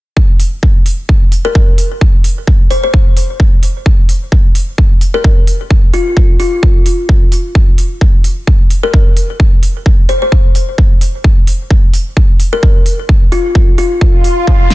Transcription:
0.17 kick
0.40 open hi-hat
0.63 kick
0.86 open hi-hat
1.09 kick
1.32 open hi-hat
1.45 A#4
1.55 kick
1.78 open hi-hat
2.01 kick
2.24 open hi-hat
2.47 kick
2.71 C5, open hi-hat
2.83 C5
2.94 kick
3.17 open hi-hat
3.40 kick
3.63 open hi-hat
3.86 kick
4.09 open hi-hat
4.32 kick
4.55 open hi-hat
4.78 kick
5.01 open hi-hat
5.14 A#4
5.24 kick
5.47 open hi-hat
5.70 kick
5.93 F4, open hi-hat
6.17 kick
6.40 F4, open hi-hat
6.63 kick
6.86 open hi-hat
7.09 kick
7.32 open hi-hat
7.55 kick
7.78 open hi-hat
8.01 kick
8.24 open hi-hat
8.47 kick
8.70 open hi-hat
8.83 A#4
8.94 kick
9.17 open hi-hat
9.40 kick
9.63 open hi-hat
9.86 kick
10.09 C5, open hi-hat
10.22 C5
10.32 kick
10.55 open hi-hat
10.78 kick
11.01 open hi-hat
11.24 kick
11.47 open hi-hat
11.71 kick
11.94 open hi-hat
12.17 kick
12.40 open hi-hat
12.53 A#4
12.63 kick
12.86 open hi-hat
13.09 kick
13.32 F4, open hi-hat
13.55 kick
13.78 F4, open hi-hat
14.01 kick, swell
14.24 open hi-hat
14.47 kick
14.70 snare, open hi-hat

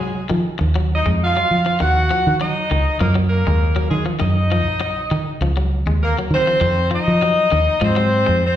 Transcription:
Already playing: C2 G#3 G#4
0.00 F#3
0.30 D#3 F3
0.59 D#2, muted clean electric guitar stroke
0.76 F#3
0.95 D#4 D#5
1.06 F2 G#3
1.24 F4 F5
1.37 F#3
1.51 F3
1.66 F3
1.80 D#2 D#3 F#4 F#5
2.11 F3
2.27 D#3
2.41 F#3 D#4 D#5
2.71 C#2 D#3
3.00 F#2 F3 A#3 A#4
3.15 F#3
3.29 A#3 A#4
3.47 D#2 G#3
3.76 F#3
3.89 D#3 G#3 G#4
4.06 F3
4.19 F#2 D#3 D#4 D#5
4.52 F3
4.67 A#1
4.81 muted clean electric guitar stroke
5.11 D#3
5.41 C#2 F3
5.57 F#3
5.86 D#2 G#3
6.03 A#3 A#4
6.19 F#3
6.31 D#3 C4 C5
6.47 F3
6.61 F2 D#3
6.91 F3 D#4 D#5
7.08 F3
7.22 F#3
7.52 D#2 D#3
7.81 G#2 F3 C4 C5
7.96 F#3
8.26 F2 G#3
8.45 C4 C5

